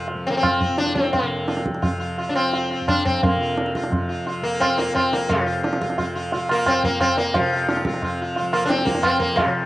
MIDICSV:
0, 0, Header, 1, 4, 480
1, 0, Start_track
1, 0, Tempo, 348837
1, 103, Time_signature, 3, 2, 24, 8
1, 6822, Tempo, 339559
1, 13463, End_track
2, 0, Start_track
2, 0, Title_t, "Sitar"
2, 0, Program_c, 0, 104
2, 367, Note_on_c, 0, 60, 89
2, 416, Note_off_c, 0, 60, 0
2, 421, Note_on_c, 0, 58, 77
2, 507, Note_off_c, 0, 58, 0
2, 512, Note_on_c, 0, 60, 87
2, 832, Note_on_c, 0, 65, 35
2, 1057, Note_off_c, 0, 65, 0
2, 1071, Note_off_c, 0, 60, 0
2, 1077, Note_on_c, 0, 62, 94
2, 1306, Note_off_c, 0, 62, 0
2, 1312, Note_on_c, 0, 60, 85
2, 1550, Note_off_c, 0, 60, 0
2, 1556, Note_on_c, 0, 58, 78
2, 2043, Note_on_c, 0, 65, 37
2, 2230, Note_off_c, 0, 58, 0
2, 2267, Note_off_c, 0, 65, 0
2, 2510, Note_on_c, 0, 65, 35
2, 2733, Note_off_c, 0, 65, 0
2, 2749, Note_on_c, 0, 65, 35
2, 2979, Note_off_c, 0, 65, 0
2, 3007, Note_on_c, 0, 65, 36
2, 3157, Note_on_c, 0, 62, 65
2, 3229, Note_off_c, 0, 65, 0
2, 3237, Note_off_c, 0, 62, 0
2, 3243, Note_on_c, 0, 60, 88
2, 3481, Note_on_c, 0, 65, 37
2, 3705, Note_off_c, 0, 65, 0
2, 3724, Note_on_c, 0, 65, 36
2, 3947, Note_off_c, 0, 65, 0
2, 3965, Note_off_c, 0, 60, 0
2, 3970, Note_on_c, 0, 62, 92
2, 4198, Note_off_c, 0, 62, 0
2, 4203, Note_on_c, 0, 60, 90
2, 4444, Note_off_c, 0, 60, 0
2, 4449, Note_on_c, 0, 58, 71
2, 4686, Note_on_c, 0, 65, 37
2, 4905, Note_off_c, 0, 65, 0
2, 5112, Note_off_c, 0, 58, 0
2, 5173, Note_on_c, 0, 65, 38
2, 5387, Note_off_c, 0, 65, 0
2, 5628, Note_on_c, 0, 65, 34
2, 5852, Note_off_c, 0, 65, 0
2, 5871, Note_on_c, 0, 65, 34
2, 6092, Note_off_c, 0, 65, 0
2, 6101, Note_on_c, 0, 58, 88
2, 6332, Note_on_c, 0, 60, 96
2, 6350, Note_off_c, 0, 58, 0
2, 6572, Note_on_c, 0, 58, 81
2, 6577, Note_on_c, 0, 65, 37
2, 6584, Note_off_c, 0, 60, 0
2, 6790, Note_off_c, 0, 65, 0
2, 6799, Note_off_c, 0, 58, 0
2, 6804, Note_on_c, 0, 60, 88
2, 6812, Note_on_c, 0, 65, 33
2, 7039, Note_off_c, 0, 65, 0
2, 7064, Note_off_c, 0, 60, 0
2, 7064, Note_on_c, 0, 58, 86
2, 7293, Note_on_c, 0, 53, 81
2, 7314, Note_off_c, 0, 58, 0
2, 7538, Note_on_c, 0, 65, 40
2, 7756, Note_off_c, 0, 65, 0
2, 7773, Note_on_c, 0, 65, 40
2, 7975, Note_off_c, 0, 53, 0
2, 8007, Note_off_c, 0, 65, 0
2, 8023, Note_on_c, 0, 65, 42
2, 8249, Note_off_c, 0, 65, 0
2, 8266, Note_on_c, 0, 65, 40
2, 8495, Note_off_c, 0, 65, 0
2, 8513, Note_on_c, 0, 65, 41
2, 8739, Note_off_c, 0, 65, 0
2, 8765, Note_on_c, 0, 65, 41
2, 8986, Note_off_c, 0, 65, 0
2, 9022, Note_on_c, 0, 58, 103
2, 9253, Note_on_c, 0, 60, 113
2, 9259, Note_off_c, 0, 58, 0
2, 9486, Note_off_c, 0, 60, 0
2, 9492, Note_on_c, 0, 58, 104
2, 9714, Note_off_c, 0, 58, 0
2, 9719, Note_on_c, 0, 60, 99
2, 9956, Note_off_c, 0, 60, 0
2, 9962, Note_on_c, 0, 58, 94
2, 10198, Note_on_c, 0, 53, 87
2, 10209, Note_off_c, 0, 58, 0
2, 10452, Note_on_c, 0, 65, 41
2, 10661, Note_off_c, 0, 65, 0
2, 10678, Note_on_c, 0, 65, 42
2, 10869, Note_off_c, 0, 53, 0
2, 10903, Note_off_c, 0, 65, 0
2, 10937, Note_on_c, 0, 65, 41
2, 11152, Note_off_c, 0, 65, 0
2, 11179, Note_on_c, 0, 65, 39
2, 11393, Note_off_c, 0, 65, 0
2, 11427, Note_on_c, 0, 65, 44
2, 11628, Note_off_c, 0, 65, 0
2, 11645, Note_on_c, 0, 65, 41
2, 11864, Note_off_c, 0, 65, 0
2, 11876, Note_on_c, 0, 58, 98
2, 12043, Note_off_c, 0, 58, 0
2, 12049, Note_on_c, 0, 62, 80
2, 12090, Note_on_c, 0, 60, 106
2, 12111, Note_off_c, 0, 62, 0
2, 12328, Note_on_c, 0, 58, 97
2, 12348, Note_off_c, 0, 60, 0
2, 12574, Note_on_c, 0, 60, 96
2, 12586, Note_off_c, 0, 58, 0
2, 12809, Note_off_c, 0, 60, 0
2, 12815, Note_on_c, 0, 58, 98
2, 13042, Note_on_c, 0, 53, 85
2, 13066, Note_off_c, 0, 58, 0
2, 13463, Note_off_c, 0, 53, 0
2, 13463, End_track
3, 0, Start_track
3, 0, Title_t, "Tanpura"
3, 0, Program_c, 1, 104
3, 0, Note_on_c, 1, 41, 57
3, 0, Note_on_c, 1, 48, 60
3, 0, Note_on_c, 1, 53, 57
3, 196, Note_off_c, 1, 53, 0
3, 196, Note_on_c, 1, 53, 58
3, 926, Note_off_c, 1, 41, 0
3, 932, Note_on_c, 1, 41, 55
3, 1671, Note_off_c, 1, 48, 0
3, 1677, Note_on_c, 1, 48, 59
3, 2408, Note_off_c, 1, 53, 0
3, 2408, Note_on_c, 1, 53, 54
3, 3150, Note_off_c, 1, 53, 0
3, 3150, Note_on_c, 1, 53, 55
3, 3860, Note_off_c, 1, 41, 0
3, 3865, Note_on_c, 1, 41, 58
3, 4612, Note_off_c, 1, 48, 0
3, 4617, Note_on_c, 1, 48, 57
3, 5354, Note_off_c, 1, 53, 0
3, 5354, Note_on_c, 1, 53, 58
3, 6075, Note_off_c, 1, 53, 0
3, 6075, Note_on_c, 1, 53, 60
3, 6798, Note_off_c, 1, 41, 0
3, 6804, Note_on_c, 1, 41, 56
3, 7325, Note_off_c, 1, 48, 0
3, 7331, Note_on_c, 1, 48, 63
3, 8057, Note_off_c, 1, 53, 0
3, 8057, Note_on_c, 1, 53, 66
3, 8797, Note_off_c, 1, 53, 0
3, 8797, Note_on_c, 1, 53, 70
3, 9527, Note_off_c, 1, 41, 0
3, 9533, Note_on_c, 1, 41, 66
3, 10251, Note_off_c, 1, 48, 0
3, 10257, Note_on_c, 1, 48, 72
3, 10992, Note_off_c, 1, 53, 0
3, 10992, Note_on_c, 1, 53, 66
3, 11713, Note_off_c, 1, 53, 0
3, 11713, Note_on_c, 1, 53, 69
3, 12444, Note_off_c, 1, 41, 0
3, 12450, Note_on_c, 1, 41, 64
3, 13173, Note_off_c, 1, 48, 0
3, 13179, Note_on_c, 1, 48, 68
3, 13463, Note_off_c, 1, 41, 0
3, 13463, Note_off_c, 1, 48, 0
3, 13463, Note_off_c, 1, 53, 0
3, 13463, End_track
4, 0, Start_track
4, 0, Title_t, "Tabla"
4, 107, Note_on_c, 9, 63, 78
4, 245, Note_off_c, 9, 63, 0
4, 593, Note_on_c, 9, 60, 74
4, 593, Note_on_c, 9, 64, 60
4, 731, Note_off_c, 9, 60, 0
4, 731, Note_off_c, 9, 64, 0
4, 837, Note_on_c, 9, 64, 52
4, 975, Note_off_c, 9, 64, 0
4, 1073, Note_on_c, 9, 62, 70
4, 1195, Note_off_c, 9, 62, 0
4, 1195, Note_on_c, 9, 62, 55
4, 1321, Note_on_c, 9, 37, 58
4, 1333, Note_off_c, 9, 62, 0
4, 1451, Note_on_c, 9, 62, 56
4, 1459, Note_off_c, 9, 37, 0
4, 1559, Note_on_c, 9, 63, 102
4, 1559, Note_on_c, 9, 64, 87
4, 1588, Note_off_c, 9, 62, 0
4, 1697, Note_off_c, 9, 63, 0
4, 1697, Note_off_c, 9, 64, 0
4, 2039, Note_on_c, 9, 62, 71
4, 2163, Note_off_c, 9, 62, 0
4, 2163, Note_on_c, 9, 62, 58
4, 2282, Note_on_c, 9, 37, 58
4, 2300, Note_off_c, 9, 62, 0
4, 2403, Note_on_c, 9, 62, 61
4, 2420, Note_off_c, 9, 37, 0
4, 2515, Note_on_c, 9, 63, 74
4, 2515, Note_on_c, 9, 64, 66
4, 2541, Note_off_c, 9, 62, 0
4, 2653, Note_off_c, 9, 63, 0
4, 2653, Note_off_c, 9, 64, 0
4, 3005, Note_on_c, 9, 63, 75
4, 3142, Note_off_c, 9, 63, 0
4, 3246, Note_on_c, 9, 60, 58
4, 3383, Note_off_c, 9, 60, 0
4, 3489, Note_on_c, 9, 63, 73
4, 3627, Note_off_c, 9, 63, 0
4, 3965, Note_on_c, 9, 60, 68
4, 3965, Note_on_c, 9, 64, 60
4, 4102, Note_off_c, 9, 60, 0
4, 4102, Note_off_c, 9, 64, 0
4, 4210, Note_on_c, 9, 64, 51
4, 4348, Note_off_c, 9, 64, 0
4, 4448, Note_on_c, 9, 63, 101
4, 4448, Note_on_c, 9, 64, 86
4, 4586, Note_off_c, 9, 63, 0
4, 4586, Note_off_c, 9, 64, 0
4, 4919, Note_on_c, 9, 62, 73
4, 5036, Note_off_c, 9, 62, 0
4, 5036, Note_on_c, 9, 62, 55
4, 5160, Note_on_c, 9, 37, 60
4, 5174, Note_off_c, 9, 62, 0
4, 5277, Note_on_c, 9, 62, 60
4, 5298, Note_off_c, 9, 37, 0
4, 5396, Note_on_c, 9, 63, 69
4, 5396, Note_on_c, 9, 64, 65
4, 5414, Note_off_c, 9, 62, 0
4, 5534, Note_off_c, 9, 63, 0
4, 5534, Note_off_c, 9, 64, 0
4, 5871, Note_on_c, 9, 63, 75
4, 6008, Note_off_c, 9, 63, 0
4, 6347, Note_on_c, 9, 60, 73
4, 6347, Note_on_c, 9, 64, 65
4, 6484, Note_off_c, 9, 60, 0
4, 6484, Note_off_c, 9, 64, 0
4, 6588, Note_on_c, 9, 62, 58
4, 6726, Note_off_c, 9, 62, 0
4, 6822, Note_on_c, 9, 60, 68
4, 6822, Note_on_c, 9, 64, 62
4, 6963, Note_off_c, 9, 60, 0
4, 6963, Note_off_c, 9, 64, 0
4, 7065, Note_on_c, 9, 62, 59
4, 7207, Note_off_c, 9, 62, 0
4, 7299, Note_on_c, 9, 63, 104
4, 7299, Note_on_c, 9, 64, 104
4, 7440, Note_off_c, 9, 63, 0
4, 7440, Note_off_c, 9, 64, 0
4, 7788, Note_on_c, 9, 62, 82
4, 7910, Note_off_c, 9, 62, 0
4, 7910, Note_on_c, 9, 62, 68
4, 8033, Note_on_c, 9, 37, 66
4, 8051, Note_off_c, 9, 62, 0
4, 8150, Note_on_c, 9, 62, 67
4, 8174, Note_off_c, 9, 37, 0
4, 8266, Note_on_c, 9, 63, 84
4, 8266, Note_on_c, 9, 64, 69
4, 8291, Note_off_c, 9, 62, 0
4, 8408, Note_off_c, 9, 63, 0
4, 8408, Note_off_c, 9, 64, 0
4, 8752, Note_on_c, 9, 63, 85
4, 8893, Note_off_c, 9, 63, 0
4, 8992, Note_on_c, 9, 60, 66
4, 9133, Note_off_c, 9, 60, 0
4, 9234, Note_on_c, 9, 60, 77
4, 9234, Note_on_c, 9, 64, 75
4, 9375, Note_off_c, 9, 60, 0
4, 9375, Note_off_c, 9, 64, 0
4, 9479, Note_on_c, 9, 64, 58
4, 9621, Note_off_c, 9, 64, 0
4, 9717, Note_on_c, 9, 60, 81
4, 9717, Note_on_c, 9, 64, 72
4, 9858, Note_off_c, 9, 60, 0
4, 9858, Note_off_c, 9, 64, 0
4, 9956, Note_on_c, 9, 62, 62
4, 10098, Note_off_c, 9, 62, 0
4, 10193, Note_on_c, 9, 63, 110
4, 10193, Note_on_c, 9, 64, 98
4, 10335, Note_off_c, 9, 63, 0
4, 10335, Note_off_c, 9, 64, 0
4, 10678, Note_on_c, 9, 62, 87
4, 10794, Note_off_c, 9, 62, 0
4, 10794, Note_on_c, 9, 62, 66
4, 10909, Note_on_c, 9, 37, 62
4, 10936, Note_off_c, 9, 62, 0
4, 11034, Note_on_c, 9, 62, 66
4, 11050, Note_off_c, 9, 37, 0
4, 11153, Note_on_c, 9, 63, 79
4, 11153, Note_on_c, 9, 64, 75
4, 11175, Note_off_c, 9, 62, 0
4, 11294, Note_off_c, 9, 63, 0
4, 11294, Note_off_c, 9, 64, 0
4, 11634, Note_on_c, 9, 63, 87
4, 11775, Note_off_c, 9, 63, 0
4, 11871, Note_on_c, 9, 60, 65
4, 12012, Note_off_c, 9, 60, 0
4, 12116, Note_on_c, 9, 62, 85
4, 12231, Note_off_c, 9, 62, 0
4, 12231, Note_on_c, 9, 62, 68
4, 12350, Note_on_c, 9, 37, 68
4, 12373, Note_off_c, 9, 62, 0
4, 12463, Note_on_c, 9, 62, 68
4, 12491, Note_off_c, 9, 37, 0
4, 12582, Note_on_c, 9, 60, 82
4, 12582, Note_on_c, 9, 64, 73
4, 12605, Note_off_c, 9, 62, 0
4, 12724, Note_off_c, 9, 60, 0
4, 12724, Note_off_c, 9, 64, 0
4, 12822, Note_on_c, 9, 64, 60
4, 12963, Note_off_c, 9, 64, 0
4, 13065, Note_on_c, 9, 63, 115
4, 13065, Note_on_c, 9, 64, 98
4, 13206, Note_off_c, 9, 63, 0
4, 13206, Note_off_c, 9, 64, 0
4, 13463, End_track
0, 0, End_of_file